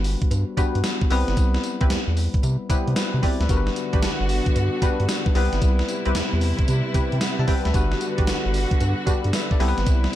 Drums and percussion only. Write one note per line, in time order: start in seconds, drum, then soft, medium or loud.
0.04 open hi-hat medium
0.04 tambourine medium
0.22 kick loud
0.22 closed hi-hat soft
0.31 closed hi-hat medium
0.31 tambourine medium
0.31 cowbell medium
0.57 kick loud
0.57 closed hi-hat medium
0.57 tambourine medium
0.75 closed hi-hat soft
0.84 snare loud
0.84 closed hi-hat medium
0.84 tambourine loud
0.84 cowbell medium
1.01 kick loud
1.10 open hi-hat medium
1.28 snare medium
1.28 closed hi-hat soft
1.37 kick loud
1.37 closed hi-hat medium
1.37 tambourine medium
1.37 cowbell medium
1.54 snare medium
1.64 closed hi-hat medium
1.64 tambourine medium
1.81 kick loud
1.81 closed hi-hat soft
1.90 snare loud
1.90 closed hi-hat medium
1.90 tambourine loud
1.90 cowbell medium
2.17 open hi-hat medium
2.17 tambourine medium
2.34 kick loud
2.34 closed hi-hat soft
2.43 closed hi-hat medium
2.43 tambourine medium
2.43 cowbell medium
2.70 kick loud
2.70 closed hi-hat medium
2.70 tambourine medium
2.88 closed hi-hat soft
2.96 snare loud
2.96 closed hi-hat medium
2.96 tambourine medium
2.96 cowbell medium
3.23 kick loud
3.23 open hi-hat medium
3.41 snare medium
3.41 closed hi-hat soft
3.49 kick loud
3.49 closed hi-hat medium
3.49 tambourine medium
3.49 cowbell medium
3.67 snare medium
3.76 closed hi-hat medium
3.76 tambourine medium
3.93 kick loud
3.93 closed hi-hat medium
4.02 snare loud
4.02 closed hi-hat medium
4.02 tambourine loud
4.02 cowbell medium
4.29 open hi-hat medium
4.29 tambourine medium
4.46 kick loud
4.46 closed hi-hat soft
4.56 closed hi-hat medium
4.56 tambourine medium
4.56 cowbell medium
4.82 kick loud
4.82 closed hi-hat medium
4.82 tambourine medium
5.00 closed hi-hat soft
5.08 snare loud
5.08 closed hi-hat medium
5.08 tambourine loud
5.08 cowbell medium
5.26 kick loud
5.35 open hi-hat medium
5.53 snare medium
5.53 closed hi-hat medium
5.62 kick loud
5.62 closed hi-hat medium
5.62 tambourine medium
5.62 cowbell medium
5.79 snare medium
5.88 closed hi-hat medium
5.88 tambourine medium
6.05 closed hi-hat medium
6.15 snare loud
6.15 closed hi-hat medium
6.15 tambourine medium
6.15 cowbell medium
6.41 open hi-hat medium
6.41 tambourine medium
6.59 kick loud
6.59 closed hi-hat soft
6.68 closed hi-hat medium
6.68 tambourine medium
6.68 cowbell medium
6.94 kick medium
6.94 closed hi-hat medium
6.94 tambourine medium
7.12 closed hi-hat soft
7.21 snare loud
7.21 closed hi-hat medium
7.21 tambourine medium
7.21 cowbell medium
7.48 kick loud
7.48 open hi-hat medium
7.65 snare medium
7.65 closed hi-hat medium
7.74 kick loud
7.74 closed hi-hat medium
7.74 tambourine medium
7.74 cowbell medium
7.92 snare medium
8.01 closed hi-hat medium
8.01 tambourine medium
8.18 kick loud
8.18 closed hi-hat medium
8.27 snare loud
8.27 closed hi-hat medium
8.27 tambourine loud
8.27 cowbell medium
8.54 open hi-hat medium
8.54 tambourine medium
8.71 kick loud
8.71 closed hi-hat soft
8.80 closed hi-hat medium
8.80 tambourine medium
8.80 cowbell medium
9.07 kick loud
9.07 closed hi-hat medium
9.07 tambourine medium
9.24 closed hi-hat soft
9.33 snare loud
9.33 closed hi-hat medium
9.33 tambourine medium
9.33 cowbell medium
9.51 kick loud
9.60 open hi-hat medium
9.78 snare medium
9.78 closed hi-hat medium
9.87 kick loud
9.87 closed hi-hat medium
9.87 tambourine medium
9.87 cowbell medium
10.04 snare medium